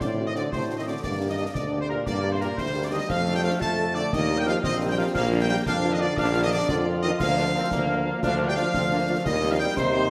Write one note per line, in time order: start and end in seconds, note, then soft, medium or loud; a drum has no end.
0.00 0.44 A2 loud
0.00 0.12 D3 medium
0.00 0.53 C4 loud
0.00 0.27 D5 loud
0.00 0.14 D5 loud
0.00 0.07 D6 medium
0.00 concert bass drum medium
0.00 snare medium
0.18 0.24 C4 medium
0.18 0.25 D4 medium
0.18 0.24 F#4 medium
0.26 0.30 D#3 medium
0.26 0.31 D#5 loud
0.26 0.32 D#5 loud
0.26 0.35 D#6 medium
0.35 0.51 D3 loud
0.35 0.42 C4 medium
0.35 0.41 D4 medium
0.35 0.42 F#4 medium
0.35 0.43 D5 loud
0.35 0.52 D5 loud
0.35 0.41 D6 medium
0.35 snare medium
0.52 0.95 A2 medium
0.52 0.64 C3 loud
0.52 1.01 A3 medium
0.52 0.64 C5 loud
0.52 0.79 C5 loud
0.52 0.58 C6 medium
0.52 concert bass drum medium
0.52 snare medium
0.69 0.75 C4 medium
0.69 0.75 D4 medium
0.69 0.76 F#4 medium
0.78 0.86 D#3 medium
0.78 0.82 D#5 loud
0.78 0.86 D#5 medium
0.78 0.83 D#6 loud
0.86 1.03 D3 medium
0.86 0.93 C4 medium
0.86 0.93 D4 medium
0.86 0.93 F#4 medium
0.86 0.94 D5 medium
0.86 0.95 D5 medium
0.86 1.03 D6 medium
1.02 1.47 G2 loud
1.02 1.16 D3 loud
1.02 1.56 A#3 loud
1.02 1.27 D5 loud
1.02 1.15 D5 loud
1.02 1.10 D6 loud
1.02 concert bass drum medium
1.02 snare medium
1.02 crash soft
1.21 1.27 A#3 medium
1.21 1.27 D4 medium
1.21 1.27 G4 medium
1.29 1.34 D#3 medium
1.29 1.33 D#5 loud
1.29 1.34 D#5 loud
1.29 1.38 D#6 medium
1.37 1.46 D#3 loud
1.37 1.45 A#3 medium
1.37 1.45 D4 medium
1.37 1.45 G4 medium
1.37 1.45 D#5 loud
1.37 1.54 D#5 medium
1.37 1.44 D#6 loud
1.53 1.98 D2 medium
1.53 1.68 D3 medium
1.53 2.07 D4 medium
1.53 1.80 D5 loud
1.53 1.78 D5 loud
1.53 1.60 D6 medium
1.53 concert bass drum medium
1.53 snare medium
1.72 1.79 A#3 medium
1.72 1.79 D4 medium
1.72 1.79 G4 medium
1.81 1.85 C3 loud
1.81 1.85 C5 medium
1.81 1.89 C5 loud
1.81 1.89 C6 loud
1.89 2.06 A#2 medium
1.89 1.96 A#3 medium
1.89 1.96 D4 medium
1.89 1.96 G4 medium
1.89 1.97 A#4 medium
1.89 2.05 A#4 loud
1.89 1.95 A#5 medium
2.05 2.50 G2 loud
2.05 2.19 D3 medium
2.05 2.54 A#3 loud
2.05 2.30 D5 loud
2.05 2.33 D5 loud
2.05 2.11 D6 loud
2.05 concert bass drum loud
2.05 snare medium
2.23 2.30 A#3 medium
2.23 2.30 D4 medium
2.23 2.30 G4 medium
2.32 2.41 C3 medium
2.32 2.36 C5 loud
2.32 2.41 C5 loud
2.32 2.39 C6 medium
2.40 2.57 A#2 loud
2.40 2.47 A#3 medium
2.40 2.47 D4 medium
2.40 2.47 G4 medium
2.40 2.48 A#4 loud
2.40 2.58 A#4 loud
2.40 2.46 A#5 medium
2.40 snare medium
2.57 3.01 D2 medium
2.57 2.69 C3 loud
2.57 3.10 G3 loud
2.57 2.82 C5 loud
2.57 2.85 C5 loud
2.57 2.82 C6 loud
2.57 concert bass drum medium
2.57 snare medium
2.75 2.81 A#3 medium
2.75 2.81 D4 medium
2.75 2.81 G4 medium
2.83 2.88 D3 medium
2.83 2.92 D5 medium
2.83 2.93 D5 loud
2.83 2.92 D6 medium
2.91 3.00 D#3 loud
2.91 2.98 A#3 medium
2.91 2.98 D4 medium
2.91 2.98 G4 medium
2.91 3.08 D#5 loud
2.91 3.09 D#5 loud
2.91 3.08 D#6 loud
3.08 3.52 F2 loud
3.08 3.33 F3 loud
3.08 4.09 A3 loud
3.08 3.21 F5 loud
3.08 3.35 F5 loud
3.08 3.16 F6 loud
3.08 concert bass drum medium
3.08 snare medium
3.08 crash soft
3.26 3.32 A3 medium
3.26 3.32 D4 medium
3.26 3.32 A4 medium
3.34 3.39 G3 loud
3.34 3.38 G5 loud
3.34 3.40 G5 loud
3.34 3.43 G6 loud
3.43 3.62 F3 loud
3.43 3.50 A3 medium
3.43 3.50 D4 medium
3.43 3.50 A4 medium
3.43 3.60 F5 loud
3.43 3.52 F5 loud
3.43 3.62 F6 loud
3.61 4.04 F2 medium
3.61 3.96 A3 loud
3.61 3.93 A5 loud
3.61 3.96 A6 loud
3.61 concert bass drum medium
3.61 snare medium
3.77 3.84 A3 medium
3.77 3.84 D4 medium
3.77 3.84 A4 medium
3.95 4.12 D3 loud
3.95 4.01 A3 medium
3.95 4.02 D4 medium
3.95 4.01 A4 medium
3.95 4.11 D5 loud
3.95 4.12 D5 loud
3.95 4.12 D6 loud
4.12 4.55 D#2 loud
4.12 4.39 D#3 loud
4.12 4.64 A#3 loud
4.12 4.38 D#5 loud
4.12 4.25 D#5 loud
4.12 4.39 D#6 loud
4.12 concert bass drum loud
4.12 snare medium
4.30 4.36 A#3 medium
4.30 4.36 D#4 medium
4.30 4.36 G4 medium
4.37 4.45 G3 loud
4.37 4.47 G5 loud
4.37 4.46 G6 loud
4.46 4.62 F3 loud
4.46 4.52 A#3 medium
4.46 4.52 D#4 medium
4.46 4.52 G4 medium
4.46 4.55 F5 loud
4.46 4.64 F5 loud
4.46 4.62 F6 loud
4.46 snare medium
4.62 5.02 A#1 loud
4.62 4.74 D#3 loud
4.62 5.11 C4 loud
4.62 4.76 D#5 loud
4.62 4.77 D#5 loud
4.62 4.70 D#6 loud
4.62 concert bass drum medium
4.62 snare medium
4.81 4.87 A#3 medium
4.81 4.87 D#4 medium
4.81 4.87 G4 medium
4.89 4.97 G3 loud
4.89 4.94 G5 loud
4.89 4.95 G5 loud
4.89 4.97 G6 loud
4.98 5.06 F3 loud
4.98 5.04 A#3 loud
4.98 5.04 D#4 medium
4.98 5.04 G4 medium
4.98 5.06 F5 loud
4.98 5.07 F5 loud
4.98 5.04 F6 loud
5.14 5.58 A#1 loud
5.14 5.26 F3 loud
5.14 5.63 A#3 loud
5.14 5.26 F5 loud
5.14 5.27 F5 loud
5.14 5.20 F6 loud
5.14 concert bass drum medium
5.14 snare medium
5.14 crash soft
5.32 5.39 A#3 medium
5.32 5.39 D4 medium
5.32 5.38 F4 medium
5.40 5.44 G3 loud
5.40 5.48 G5 loud
5.40 5.49 G5 loud
5.40 5.45 G6 loud
5.49 5.57 G3 loud
5.49 5.55 A#3 loud
5.49 5.55 D4 medium
5.49 5.55 F4 medium
5.49 5.57 G5 loud
5.49 5.66 G5 loud
5.49 5.56 G6 loud
5.66 6.09 F2 loud
5.66 5.94 F3 loud
5.66 6.04 D4 loud
5.66 5.90 F5 loud
5.66 5.78 F5 loud
5.66 5.73 F6 loud
5.66 concert bass drum medium
5.66 snare medium
5.83 5.90 A#3 medium
5.83 5.90 D4 medium
5.83 5.89 F4 loud
5.92 6.03 D#3 loud
5.92 6.01 D#5 loud
5.92 5.97 D#5 loud
5.92 6.01 D#6 loud
6.00 6.17 D3 loud
6.00 6.06 A#3 medium
6.00 6.06 D4 medium
6.00 6.07 F4 loud
6.00 6.17 D5 loud
6.00 6.18 D6 loud
6.17 6.61 A#1 loud
6.17 6.30 F3 loud
6.17 6.66 D4 loud
6.17 6.43 F5 loud
6.17 6.42 F5 loud
6.17 6.42 F6 loud
6.17 concert bass drum loud
6.17 snare medium
6.34 6.41 A#3 medium
6.34 6.40 D4 medium
6.34 6.40 F4 medium
6.43 6.47 D#3 loud
6.43 6.47 D#5 loud
6.43 6.48 D#5 loud
6.43 6.52 D#6 loud
6.51 6.60 D3 loud
6.51 6.58 A#3 medium
6.51 6.58 D4 medium
6.51 6.58 F4 medium
6.51 6.60 D5 loud
6.51 6.68 D5 loud
6.51 6.68 D6 loud
6.69 7.12 F2 loud
6.69 6.85 D3 loud
6.69 7.21 F4 loud
6.69 6.77 D5 loud
6.69 6.85 D5 loud
6.69 6.75 D6 loud
6.69 concert bass drum loud
6.69 snare medium
6.86 6.92 A#3 medium
6.86 6.92 D4 medium
6.86 6.92 F4 medium
7.02 7.12 D#3 loud
7.02 7.09 A#3 medium
7.02 7.10 D4 loud
7.02 7.09 F4 loud
7.02 7.10 D#5 loud
7.02 7.19 D#5 loud
7.02 7.09 D#6 loud
7.19 7.63 D2 loud
7.19 8.19 F3 loud
7.19 7.38 A#3 loud
7.19 8.19 F5 loud
7.19 8.23 F5 loud
7.19 8.19 F6 loud
7.19 concert bass drum loud
7.19 snare medium
7.19 crash medium
7.37 7.44 A#3 medium
7.37 7.45 D4 loud
7.37 7.44 D4 loud
7.37 7.44 F4 loud
7.55 7.61 A#3 loud
7.55 7.71 C4 loud
7.55 7.61 D4 medium
7.55 7.61 F4 medium
7.71 8.15 D2 loud
7.71 8.20 A#3 loud
7.71 concert bass drum loud
7.71 snare medium
7.89 7.95 A#3 medium
7.89 7.95 D4 loud
7.89 7.95 F4 medium
8.06 8.12 A#3 loud
8.06 8.12 D4 medium
8.06 8.12 F4 medium
8.22 8.66 D2 loud
8.22 8.47 F3 loud
8.22 8.71 D4 loud
8.22 8.35 F5 loud
8.22 8.48 F5 loud
8.22 8.29 F6 loud
8.22 concert bass drum loud
8.22 snare medium
8.40 8.46 A#3 medium
8.40 8.46 D4 medium
8.40 8.46 F4 medium
8.48 8.53 G3 loud
8.48 8.57 G5 loud
8.48 8.57 G6 loud
8.55 9.28 F3 loud
8.55 8.63 A#3 medium
8.55 8.64 D4 loud
8.55 8.64 F4 loud
8.55 9.21 F5 loud
8.55 9.22 F5 loud
8.55 9.22 F6 loud
8.55 snare medium
8.74 9.17 D2 loud
8.74 8.83 C4 loud
8.74 concert bass drum loud
8.74 snare medium
8.91 9.08 A#3 loud
8.91 8.98 A#3 loud
8.91 8.98 D4 medium
8.91 8.98 F4 medium
9.08 9.24 A3 loud
9.08 9.15 A#3 loud
9.08 9.15 D4 medium
9.08 9.15 F4 loud
9.25 9.68 D#2 loud
9.25 9.54 D#3 loud
9.25 9.77 G3 loud
9.25 9.51 D#5 loud
9.25 9.52 D#5 loud
9.25 9.50 D#6 loud
9.25 concert bass drum loud
9.25 snare medium
9.25 crash soft
9.43 9.50 G3 medium
9.43 9.49 C4 loud
9.43 9.49 G4 medium
9.50 9.60 F3 loud
9.50 9.60 F5 loud
9.50 9.55 F6 loud
9.59 9.66 G3 medium
9.59 9.68 G3 loud
9.59 9.66 C4 medium
9.59 9.66 G4 medium
9.59 9.75 G5 loud
9.59 9.76 G5 loud
9.59 9.65 G6 loud
9.76 10.10 D#2 loud
9.76 10.10 C3 loud
9.76 10.10 D#4 loud
9.76 10.10 C5 loud
9.76 10.10 C6 loud
9.76 concert bass drum medium
9.76 snare medium
9.94 10.00 G3 medium
9.94 10.00 C4 medium
9.94 10.00 G4 medium